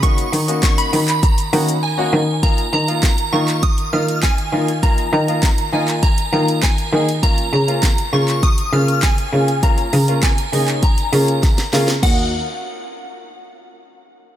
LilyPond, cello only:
\new Staff \with { instrumentName = "Cello" } { \clef bass \time 4/4 \key ees \minor \tempo 4 = 100 des8 ees4 ees4 ees4 ees8 | r8 ees4 ees4 ees4 ees8~ | ees8 ees4 ees4 ees4 ees8~ | ees8 des4 des4 des4 des8~ |
des8 des4 des4 des4 des8 | ees,8 r2. r8 | }